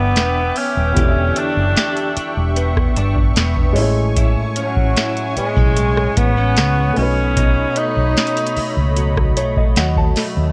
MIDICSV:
0, 0, Header, 1, 8, 480
1, 0, Start_track
1, 0, Key_signature, 3, "major"
1, 0, Tempo, 800000
1, 581, Time_signature, 4, 2, 24, 8
1, 6314, End_track
2, 0, Start_track
2, 0, Title_t, "Analog synth pad"
2, 0, Program_c, 0, 89
2, 0, Note_on_c, 0, 76, 76
2, 0, Note_on_c, 0, 79, 85
2, 0, Note_on_c, 0, 86, 91
2, 561, Note_off_c, 0, 86, 0
2, 581, Note_on_c, 0, 85, 92
2, 2236, Note_off_c, 0, 76, 0
2, 2236, Note_off_c, 0, 79, 0
2, 2261, Note_on_c, 0, 73, 90
2, 2262, Note_on_c, 0, 80, 78
2, 4157, Note_off_c, 0, 85, 0
2, 4162, Note_off_c, 0, 80, 0
2, 4179, Note_on_c, 0, 83, 91
2, 4180, Note_on_c, 0, 75, 83
2, 6314, Note_off_c, 0, 73, 0
2, 6314, Note_off_c, 0, 75, 0
2, 6314, Note_off_c, 0, 83, 0
2, 6314, End_track
3, 0, Start_track
3, 0, Title_t, "Grand piano"
3, 0, Program_c, 1, 0
3, 0, Control_c, 1, 64, 127
3, 0, Note_on_c, 1, 50, 77
3, 0, Note_on_c, 1, 59, 82
3, 0, Note_on_c, 1, 64, 79
3, 0, Note_on_c, 1, 76, 89
3, 0, Note_on_c, 1, 79, 76
3, 544, Note_off_c, 1, 59, 0
3, 552, Note_off_c, 1, 50, 0
3, 556, Note_on_c, 1, 59, 67
3, 558, Note_off_c, 1, 64, 0
3, 565, Note_off_c, 1, 79, 0
3, 570, Note_on_c, 1, 50, 63
3, 584, Note_on_c, 1, 64, 67
3, 591, Note_off_c, 1, 76, 0
3, 598, Note_on_c, 1, 67, 61
3, 611, Note_on_c, 1, 74, 59
3, 635, Note_off_c, 1, 74, 0
3, 651, Note_on_c, 1, 76, 79
3, 2224, Note_off_c, 1, 59, 0
3, 2231, Note_off_c, 1, 50, 0
3, 2237, Note_on_c, 1, 56, 88
3, 2238, Note_off_c, 1, 64, 0
3, 2245, Note_off_c, 1, 67, 0
3, 2250, Note_on_c, 1, 61, 78
3, 2265, Note_on_c, 1, 64, 77
3, 2268, Control_c, 1, 64, 0
3, 2272, Note_off_c, 1, 76, 0
3, 2278, Note_on_c, 1, 68, 75
3, 2292, Note_on_c, 1, 73, 97
3, 2369, Control_c, 1, 64, 127
3, 4145, Note_off_c, 1, 56, 0
3, 4151, Note_off_c, 1, 61, 0
3, 4158, Note_on_c, 1, 57, 73
3, 4159, Note_off_c, 1, 64, 0
3, 4165, Note_off_c, 1, 68, 0
3, 4171, Note_on_c, 1, 59, 65
3, 4172, Note_off_c, 1, 73, 0
3, 4185, Note_on_c, 1, 63, 66
3, 4189, Control_c, 1, 64, 0
3, 4199, Note_on_c, 1, 66, 65
3, 4212, Note_on_c, 1, 71, 78
3, 4276, Control_c, 1, 64, 127
3, 5624, Note_on_c, 1, 73, 75
3, 5734, Note_off_c, 1, 73, 0
3, 5745, Note_on_c, 1, 75, 74
3, 5855, Note_off_c, 1, 75, 0
3, 5864, Note_on_c, 1, 78, 74
3, 5974, Note_off_c, 1, 78, 0
3, 5985, Note_on_c, 1, 81, 78
3, 6065, Note_off_c, 1, 57, 0
3, 6072, Note_off_c, 1, 59, 0
3, 6079, Note_off_c, 1, 63, 0
3, 6086, Note_off_c, 1, 66, 0
3, 6092, Note_off_c, 1, 71, 0
3, 6314, Note_off_c, 1, 81, 0
3, 6314, End_track
4, 0, Start_track
4, 0, Title_t, "Alto saxophone"
4, 0, Program_c, 2, 65
4, 0, Note_on_c, 2, 59, 111
4, 348, Note_on_c, 2, 61, 111
4, 357, Note_off_c, 2, 59, 0
4, 825, Note_on_c, 2, 62, 113
4, 834, Note_off_c, 2, 61, 0
4, 1543, Note_off_c, 2, 62, 0
4, 2743, Note_on_c, 2, 54, 91
4, 3198, Note_off_c, 2, 54, 0
4, 3222, Note_on_c, 2, 56, 101
4, 3703, Note_on_c, 2, 59, 111
4, 3712, Note_off_c, 2, 56, 0
4, 4184, Note_on_c, 2, 61, 114
4, 4193, Note_off_c, 2, 59, 0
4, 4664, Note_on_c, 2, 63, 108
4, 4673, Note_off_c, 2, 61, 0
4, 5382, Note_off_c, 2, 63, 0
4, 6314, End_track
5, 0, Start_track
5, 0, Title_t, "Clean electric guitar"
5, 0, Program_c, 3, 27
5, 0, Note_on_c, 3, 52, 90
5, 0, Note_on_c, 3, 59, 66
5, 0, Note_on_c, 3, 62, 64
5, 93, Note_off_c, 3, 59, 0
5, 100, Note_on_c, 3, 59, 61
5, 341, Note_off_c, 3, 62, 0
5, 578, Note_off_c, 3, 52, 0
5, 580, Note_on_c, 3, 52, 92
5, 583, Note_on_c, 3, 67, 76
5, 820, Note_on_c, 3, 62, 69
5, 1052, Note_off_c, 3, 67, 0
5, 1059, Note_on_c, 3, 67, 76
5, 1293, Note_off_c, 3, 62, 0
5, 1300, Note_on_c, 3, 62, 66
5, 1532, Note_off_c, 3, 59, 0
5, 1539, Note_on_c, 3, 59, 68
5, 1773, Note_off_c, 3, 62, 0
5, 1780, Note_on_c, 3, 62, 69
5, 2011, Note_off_c, 3, 59, 0
5, 2018, Note_on_c, 3, 59, 63
5, 2259, Note_on_c, 3, 45, 90
5, 2307, Note_off_c, 3, 59, 0
5, 2308, Note_off_c, 3, 62, 0
5, 2308, Note_off_c, 3, 67, 0
5, 2491, Note_off_c, 3, 45, 0
5, 2498, Note_on_c, 3, 45, 92
5, 2502, Note_on_c, 3, 64, 77
5, 2680, Note_off_c, 3, 52, 0
5, 2739, Note_on_c, 3, 61, 70
5, 2971, Note_off_c, 3, 64, 0
5, 2979, Note_on_c, 3, 64, 75
5, 3217, Note_off_c, 3, 61, 0
5, 3219, Note_on_c, 3, 59, 63
5, 3339, Note_off_c, 3, 59, 0
5, 3339, Note_on_c, 3, 61, 58
5, 3459, Note_on_c, 3, 56, 67
5, 3698, Note_off_c, 3, 61, 0
5, 3701, Note_on_c, 3, 59, 66
5, 3822, Note_off_c, 3, 59, 0
5, 3822, Note_on_c, 3, 61, 53
5, 3933, Note_off_c, 3, 56, 0
5, 3941, Note_on_c, 3, 56, 64
5, 4179, Note_off_c, 3, 45, 0
5, 4181, Note_on_c, 3, 47, 88
5, 4228, Note_off_c, 3, 64, 0
5, 4229, Note_off_c, 3, 56, 0
5, 4229, Note_off_c, 3, 61, 0
5, 4413, Note_off_c, 3, 47, 0
5, 4420, Note_on_c, 3, 47, 90
5, 4424, Note_on_c, 3, 63, 81
5, 4660, Note_on_c, 3, 57, 63
5, 4898, Note_off_c, 3, 63, 0
5, 4900, Note_on_c, 3, 61, 73
5, 5021, Note_off_c, 3, 61, 0
5, 5021, Note_on_c, 3, 63, 64
5, 5133, Note_off_c, 3, 57, 0
5, 5140, Note_on_c, 3, 57, 62
5, 5381, Note_on_c, 3, 54, 65
5, 5614, Note_off_c, 3, 57, 0
5, 5621, Note_on_c, 3, 57, 63
5, 5854, Note_off_c, 3, 54, 0
5, 5861, Note_on_c, 3, 54, 64
5, 6093, Note_off_c, 3, 57, 0
5, 6100, Note_on_c, 3, 57, 63
5, 6314, Note_off_c, 3, 47, 0
5, 6314, Note_off_c, 3, 54, 0
5, 6314, Note_off_c, 3, 57, 0
5, 6314, Note_off_c, 3, 63, 0
5, 6314, End_track
6, 0, Start_track
6, 0, Title_t, "Fingered electric bass"
6, 0, Program_c, 4, 33
6, 0, Note_on_c, 4, 31, 96
6, 99, Note_off_c, 4, 31, 0
6, 99, Note_on_c, 4, 28, 108
6, 302, Note_off_c, 4, 28, 0
6, 461, Note_on_c, 4, 27, 90
6, 562, Note_off_c, 4, 27, 0
6, 580, Note_on_c, 4, 28, 104
6, 782, Note_off_c, 4, 28, 0
6, 940, Note_on_c, 4, 30, 89
6, 1041, Note_off_c, 4, 30, 0
6, 1422, Note_on_c, 4, 28, 94
6, 1724, Note_off_c, 4, 28, 0
6, 1780, Note_on_c, 4, 31, 93
6, 1982, Note_off_c, 4, 31, 0
6, 2020, Note_on_c, 4, 28, 106
6, 2260, Note_off_c, 4, 28, 0
6, 2260, Note_on_c, 4, 33, 95
6, 2664, Note_off_c, 4, 33, 0
6, 2861, Note_on_c, 4, 33, 89
6, 2962, Note_off_c, 4, 33, 0
6, 3341, Note_on_c, 4, 35, 87
6, 3643, Note_off_c, 4, 35, 0
6, 3702, Note_on_c, 4, 33, 97
6, 3942, Note_off_c, 4, 33, 0
6, 3942, Note_on_c, 4, 37, 102
6, 4143, Note_off_c, 4, 37, 0
6, 4183, Note_on_c, 4, 35, 94
6, 4585, Note_off_c, 4, 35, 0
6, 4781, Note_on_c, 4, 35, 83
6, 4882, Note_off_c, 4, 35, 0
6, 5262, Note_on_c, 4, 37, 89
6, 5622, Note_off_c, 4, 37, 0
6, 5622, Note_on_c, 4, 35, 91
6, 5823, Note_off_c, 4, 35, 0
6, 5862, Note_on_c, 4, 39, 98
6, 6063, Note_off_c, 4, 39, 0
6, 6222, Note_on_c, 4, 39, 99
6, 6314, Note_off_c, 4, 39, 0
6, 6314, End_track
7, 0, Start_track
7, 0, Title_t, "Muted fingered electric bass strokes"
7, 1300, Note_on_c, 9, 29, 53
7, 1360, Note_off_c, 9, 29, 0
7, 3221, Note_on_c, 9, 29, 50
7, 3281, Note_off_c, 9, 29, 0
7, 5141, Note_on_c, 9, 29, 48
7, 5201, Note_off_c, 9, 29, 0
7, 6314, End_track
8, 0, Start_track
8, 0, Title_t, "Drums"
8, 96, Note_on_c, 9, 42, 75
8, 101, Note_on_c, 9, 38, 127
8, 156, Note_off_c, 9, 42, 0
8, 161, Note_off_c, 9, 38, 0
8, 335, Note_on_c, 9, 46, 70
8, 395, Note_off_c, 9, 46, 0
8, 580, Note_on_c, 9, 36, 122
8, 580, Note_on_c, 9, 42, 87
8, 640, Note_off_c, 9, 36, 0
8, 640, Note_off_c, 9, 42, 0
8, 816, Note_on_c, 9, 42, 68
8, 876, Note_off_c, 9, 42, 0
8, 1059, Note_on_c, 9, 42, 65
8, 1064, Note_on_c, 9, 38, 127
8, 1119, Note_off_c, 9, 42, 0
8, 1124, Note_off_c, 9, 38, 0
8, 1180, Note_on_c, 9, 42, 37
8, 1240, Note_off_c, 9, 42, 0
8, 1300, Note_on_c, 9, 42, 69
8, 1360, Note_off_c, 9, 42, 0
8, 1540, Note_on_c, 9, 42, 76
8, 1600, Note_off_c, 9, 42, 0
8, 1661, Note_on_c, 9, 36, 101
8, 1663, Note_on_c, 9, 37, 95
8, 1721, Note_off_c, 9, 36, 0
8, 1723, Note_off_c, 9, 37, 0
8, 1779, Note_on_c, 9, 42, 73
8, 1839, Note_off_c, 9, 42, 0
8, 1899, Note_on_c, 9, 36, 104
8, 1959, Note_off_c, 9, 36, 0
8, 2017, Note_on_c, 9, 42, 73
8, 2023, Note_on_c, 9, 38, 125
8, 2077, Note_off_c, 9, 42, 0
8, 2083, Note_off_c, 9, 38, 0
8, 2138, Note_on_c, 9, 36, 95
8, 2198, Note_off_c, 9, 36, 0
8, 2255, Note_on_c, 9, 46, 72
8, 2315, Note_off_c, 9, 46, 0
8, 2498, Note_on_c, 9, 42, 89
8, 2500, Note_on_c, 9, 36, 127
8, 2558, Note_off_c, 9, 42, 0
8, 2560, Note_off_c, 9, 36, 0
8, 2736, Note_on_c, 9, 42, 70
8, 2796, Note_off_c, 9, 42, 0
8, 2859, Note_on_c, 9, 36, 99
8, 2919, Note_off_c, 9, 36, 0
8, 2980, Note_on_c, 9, 42, 67
8, 2984, Note_on_c, 9, 38, 127
8, 3040, Note_off_c, 9, 42, 0
8, 3044, Note_off_c, 9, 38, 0
8, 3101, Note_on_c, 9, 42, 37
8, 3161, Note_off_c, 9, 42, 0
8, 3221, Note_on_c, 9, 42, 65
8, 3281, Note_off_c, 9, 42, 0
8, 3340, Note_on_c, 9, 36, 102
8, 3400, Note_off_c, 9, 36, 0
8, 3460, Note_on_c, 9, 42, 78
8, 3520, Note_off_c, 9, 42, 0
8, 3584, Note_on_c, 9, 37, 97
8, 3644, Note_off_c, 9, 37, 0
8, 3701, Note_on_c, 9, 42, 76
8, 3702, Note_on_c, 9, 36, 97
8, 3761, Note_off_c, 9, 42, 0
8, 3762, Note_off_c, 9, 36, 0
8, 3938, Note_on_c, 9, 42, 74
8, 3944, Note_on_c, 9, 38, 127
8, 3998, Note_off_c, 9, 42, 0
8, 4004, Note_off_c, 9, 38, 0
8, 4178, Note_on_c, 9, 46, 68
8, 4238, Note_off_c, 9, 46, 0
8, 4421, Note_on_c, 9, 36, 114
8, 4421, Note_on_c, 9, 42, 90
8, 4481, Note_off_c, 9, 36, 0
8, 4481, Note_off_c, 9, 42, 0
8, 4657, Note_on_c, 9, 42, 66
8, 4717, Note_off_c, 9, 42, 0
8, 4901, Note_on_c, 9, 42, 41
8, 4906, Note_on_c, 9, 38, 127
8, 4961, Note_off_c, 9, 42, 0
8, 4962, Note_on_c, 9, 42, 49
8, 4966, Note_off_c, 9, 38, 0
8, 5022, Note_off_c, 9, 42, 0
8, 5022, Note_on_c, 9, 42, 56
8, 5080, Note_off_c, 9, 42, 0
8, 5080, Note_on_c, 9, 42, 61
8, 5140, Note_off_c, 9, 42, 0
8, 5140, Note_on_c, 9, 46, 48
8, 5200, Note_off_c, 9, 46, 0
8, 5381, Note_on_c, 9, 42, 74
8, 5441, Note_off_c, 9, 42, 0
8, 5502, Note_on_c, 9, 36, 101
8, 5506, Note_on_c, 9, 37, 97
8, 5562, Note_off_c, 9, 36, 0
8, 5566, Note_off_c, 9, 37, 0
8, 5622, Note_on_c, 9, 42, 76
8, 5682, Note_off_c, 9, 42, 0
8, 5740, Note_on_c, 9, 36, 103
8, 5800, Note_off_c, 9, 36, 0
8, 5858, Note_on_c, 9, 42, 77
8, 5864, Note_on_c, 9, 38, 121
8, 5918, Note_off_c, 9, 42, 0
8, 5924, Note_off_c, 9, 38, 0
8, 5978, Note_on_c, 9, 36, 91
8, 6038, Note_off_c, 9, 36, 0
8, 6096, Note_on_c, 9, 46, 71
8, 6103, Note_on_c, 9, 38, 73
8, 6156, Note_off_c, 9, 46, 0
8, 6163, Note_off_c, 9, 38, 0
8, 6314, End_track
0, 0, End_of_file